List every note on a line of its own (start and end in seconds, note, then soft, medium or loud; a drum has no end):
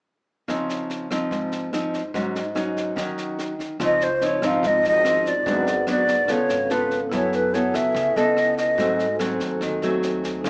0.48 1.29 C#3 medium
0.48 1.07 F3 soft
0.48 1.07 C4 soft
0.48 1.08 D#4 medium
0.48 kick soft
0.48 cross-stick soft
0.48 snare soft
0.69 snare soft
0.90 snare soft
1.11 1.70 F3 soft
1.11 1.70 C4 medium
1.11 1.70 D#4 medium
1.11 kick soft
1.11 cross-stick medium
1.11 snare soft
1.31 2.12 G#2 medium
1.31 kick soft
1.31 snare soft
1.52 snare soft
1.73 2.01 F3 soft
1.73 2.01 C4 soft
1.73 2.01 D#4 medium
1.73 cross-stick medium
1.73 snare soft
1.93 kick soft
1.93 snare soft
2.14 2.95 G#2 medium
2.14 2.41 F#3 soft
2.14 2.41 C#4 soft
2.14 2.41 D#4 medium
2.14 kick soft
2.14 snare soft
2.35 snare soft
2.55 2.94 F#3 soft
2.55 2.94 C#4 soft
2.55 2.94 D#4 medium
2.55 cross-stick medium
2.55 snare soft
2.77 kick soft
2.77 snare soft
2.96 3.78 D#3 medium
2.96 3.53 F#3 soft
2.96 3.53 C#4 medium
2.96 3.53 D#4 medium
2.96 kick soft
2.96 cross-stick soft
2.96 snare soft
3.18 snare soft
3.39 snare soft
3.60 kick soft
3.60 snare soft
3.80 4.38 C#2 medium
3.80 4.61 C#3 medium
3.80 4.07 F3 medium
3.80 4.07 C4 medium
3.80 4.07 D#4 medium
3.80 5.02 F4 soft
3.80 5.03 C5 soft
3.80 4.05 D#5 medium
3.80 kick medium
3.80 cross-stick soft
3.80 snare soft
3.84 5.04 D#5 soft
4.01 4.26 C5 medium
4.01 snare soft
4.21 4.39 F3 medium
4.21 4.39 C4 soft
4.21 4.40 D#4 medium
4.21 4.48 C#5 medium
4.21 snare soft
4.42 4.62 G#1 medium
4.42 5.02 F3 medium
4.42 5.02 C4 medium
4.42 5.02 D#4 medium
4.42 kick soft
4.42 cross-stick medium
4.42 snare soft
4.46 4.68 F5 medium
4.63 4.82 G#1 medium
4.63 5.44 G#2 soft
4.63 kick soft
4.63 snare soft
4.67 4.86 D#5 medium
4.83 5.42 G#1 medium
4.83 snare soft
4.88 5.30 D#5 medium
5.03 5.31 F3 soft
5.03 5.32 C4 soft
5.03 5.46 C#4 soft
5.03 5.32 D#4 medium
5.03 5.46 F4 soft
5.03 5.47 C5 soft
5.03 5.47 D#5 soft
5.03 cross-stick medium
5.03 snare soft
5.25 5.89 D5 medium
5.25 kick soft
5.25 snare soft
5.43 6.04 G#1 medium
5.43 6.27 G#2 medium
5.43 5.73 F#3 soft
5.43 6.26 D4 soft
5.43 6.27 G#4 soft
5.43 kick soft
5.43 snare soft
5.47 5.73 B3 soft
5.47 5.73 D4 medium
5.47 6.28 B4 soft
5.47 6.29 F#5 soft
5.67 snare soft
5.87 6.14 F#3 soft
5.87 6.14 B3 medium
5.87 6.14 D4 medium
5.87 6.33 D5 medium
5.87 cross-stick medium
5.87 snare soft
6.08 6.28 D2 medium
6.08 kick soft
6.08 snare soft
6.26 6.48 C#2 medium
6.26 7.10 C#3 soft
6.26 6.56 B3 soft
6.26 7.09 C#4 soft
6.26 6.56 F4 soft
6.26 7.10 A4 soft
6.26 6.56 A4 medium
6.26 kick soft
6.26 cross-stick soft
6.26 snare soft
6.30 7.11 B4 soft
6.30 6.73 C#5 medium
6.30 7.12 F5 soft
6.49 7.08 G#1 medium
6.49 snare soft
6.70 6.97 B3 soft
6.70 6.98 F4 soft
6.70 6.97 A4 medium
6.70 7.02 B4 medium
6.70 snare soft
6.91 kick soft
6.91 snare soft
7.10 7.70 F#2 medium
7.10 7.93 F#3 soft
7.10 7.50 B3 soft
7.10 8.73 E4 soft
7.10 7.50 E4 soft
7.10 8.75 A4 soft
7.10 7.51 A4 medium
7.10 kick medium
7.10 cross-stick soft
7.10 snare soft
7.14 8.76 B4 soft
7.14 7.37 C#5 medium
7.14 8.77 G#5 medium
7.33 7.56 B4 medium
7.33 snare soft
7.54 8.13 B3 medium
7.54 8.13 E4 medium
7.54 8.13 A4 medium
7.54 7.77 C#5 medium
7.54 snare soft
7.74 7.93 C#2 medium
7.74 8.18 E5 medium
7.74 kick soft
7.74 cross-stick medium
7.74 snare soft
7.95 8.14 C#2 medium
7.95 8.76 C#3 soft
7.95 kick medium
7.95 snare soft
8.16 8.74 C#2 medium
8.16 8.75 B3 medium
8.16 8.75 E4 medium
8.16 8.75 A4 medium
8.16 8.57 D#5 medium
8.16 snare soft
8.37 cross-stick medium
8.37 snare soft
8.57 9.16 D#5 medium
8.57 kick soft
8.57 snare soft
8.75 9.36 G#2 medium
8.75 9.59 G#2 soft
8.75 9.05 F#3 medium
8.75 9.05 A3 medium
8.75 9.05 C4 medium
8.75 10.39 F#4 soft
8.75 10.40 A4 soft
8.75 10.41 C5 soft
8.75 kick soft
8.75 snare soft
8.81 10.42 G#5 soft
8.99 snare soft
9.19 9.78 F#3 medium
9.19 9.78 A3 medium
9.19 9.79 C4 medium
9.19 cross-stick medium
9.19 snare soft
9.40 9.59 D#2 medium
9.40 kick soft
9.40 snare soft
9.61 9.80 D#2 medium
9.61 10.43 D#3 soft
9.61 kick soft
9.61 cross-stick soft
9.61 snare soft
9.82 10.40 D#2 medium
9.82 10.42 F#3 medium
9.82 10.41 A3 medium
9.82 10.42 C4 medium
9.82 snare soft
10.03 snare soft
10.24 kick soft
10.24 snare soft
10.41 10.50 C#2 medium
10.41 10.50 D#4 soft
10.41 10.50 A#4 soft
10.41 kick soft
10.41 cross-stick soft
10.41 snare soft
10.45 10.50 C#3 medium
10.45 10.50 F3 medium
10.45 10.50 A#3 medium
10.45 10.50 D#4 medium
10.45 10.50 C#5 soft
10.45 10.50 F5 medium